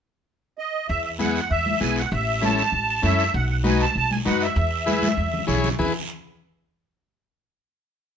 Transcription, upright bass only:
0.89 1.38 E2 medium
1.51 1.75 E2 medium
1.81 2.05 B1 medium
2.12 2.61 A1 loud
2.72 2.97 A1 medium
3.03 3.28 F#2 medium
3.34 3.83 B1 loud
3.96 4.20 B1 medium
4.26 4.50 F#2 medium
4.56 5.05 E2 loud
5.17 5.42 E2 medium
5.48 5.73 B1 medium
5.79 5.93 E2 medium

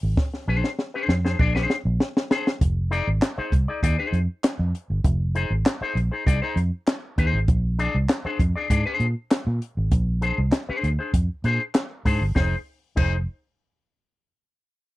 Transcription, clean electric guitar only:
0.48 0.68 D4 medium
0.48 0.69 G#4 medium
0.48 0.69 C5 medium
0.94 1.15 D4 medium
0.94 1.14 G#4 medium
0.94 1.14 C5 medium
1.25 1.37 D4 medium
1.25 1.37 G#4 medium
1.25 1.36 C5 medium
1.39 1.52 D4 medium
1.39 1.53 G#4 medium
1.39 1.53 D5 medium
1.55 1.75 D4 medium
1.55 1.75 G#4 medium
1.55 1.74 C5 medium
2.30 2.47 D4 medium
2.30 2.48 G#4 medium
2.30 2.48 C5 medium
2.91 3.08 D#4 medium
2.91 3.08 G#4 medium
2.91 3.08 D5 loud
3.38 3.53 D#4 medium
3.38 3.53 G#4 medium
3.38 3.53 C5 medium
3.68 3.81 D#4 soft
3.68 3.80 G#4 medium
3.68 3.80 D5 medium
3.83 3.96 D#4 medium
3.83 3.96 G#4 medium
3.83 3.96 D5 medium
3.99 4.19 D#4 medium
3.99 4.18 G#4 medium
3.99 4.18 C5 medium
5.35 5.51 D#4 medium
5.35 5.52 G#4 medium
5.35 5.52 C5 medium
5.82 5.97 D#4 medium
5.82 5.97 G#4 medium
5.82 5.96 C5 medium
6.12 6.24 D#4 soft
6.12 6.24 G#4 medium
6.12 6.23 C5 medium
6.26 6.39 D#4 medium
6.26 6.39 G#4 medium
6.26 6.40 D5 medium
6.42 6.58 D#4 medium
6.42 6.57 G#4 medium
6.42 6.57 C5 medium
7.18 7.38 D#4 medium
7.18 7.39 G#4 medium
7.18 7.39 C5 medium
7.79 7.95 D4 medium
7.79 7.95 G#4 medium
7.79 7.96 D5 loud
8.25 8.41 D4 medium
8.25 8.40 G#4 medium
8.25 8.40 C5 medium
8.56 8.68 D4 medium
8.56 8.68 G#4 medium
8.56 8.67 D5 medium
8.70 8.83 D4 medium
8.70 8.83 G#4 medium
8.70 8.84 D5 medium
8.86 9.06 D4 medium
8.86 9.06 G#4 medium
8.86 9.05 C5 medium
10.21 10.38 D4 medium
10.21 10.39 G#4 medium
10.21 10.39 C5 medium
10.69 10.89 D4 medium
10.69 10.89 G#4 medium
10.69 10.88 C5 medium
10.99 11.11 D4 medium
10.99 11.11 G#4 medium
10.99 11.11 C5 medium
11.44 11.61 D4 medium
11.44 11.61 G#4 medium
11.44 11.62 C5 medium
12.05 12.22 D4 medium
12.05 12.22 G#4 medium
12.05 12.23 C5 loud
12.35 12.54 D#4 medium
12.35 12.55 G#4 medium
12.35 12.55 C5 medium
12.96 13.15 D#4 medium
12.96 13.16 G#4 medium
12.96 13.16 C5 medium

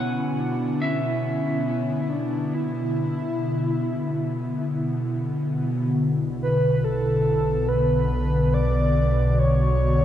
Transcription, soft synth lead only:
0.00 0.40 C#4 medium
0.39 0.84 D4 medium
0.83 2.02 C#4 loud
2.01 2.11 E4 medium
2.10 2.55 D4 medium
2.54 5.11 E4 loud
6.42 6.86 B4 medium
6.84 7.70 A4 medium
7.68 8.55 B4 loud
8.54 9.31 D5 loud
9.31 9.40 D5 medium
9.39 10.05 C#5 loud

